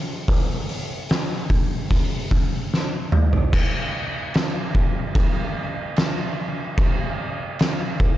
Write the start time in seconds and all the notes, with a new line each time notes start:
0.28 kick, open hi-hat
0.69 open hi-hat
1.09 snare, open hi-hat
1.50 kick, open hi-hat
1.91 kick, open hi-hat
2.31 kick, open hi-hat
2.74 snare
3.12 mid tom
3.33 floor tom
3.53 kick, crash
4.34 snare, crash
4.75 kick
5.15 kick, crash
5.96 snare, crash
6.78 kick, crash
7.59 snare, crash
8.00 kick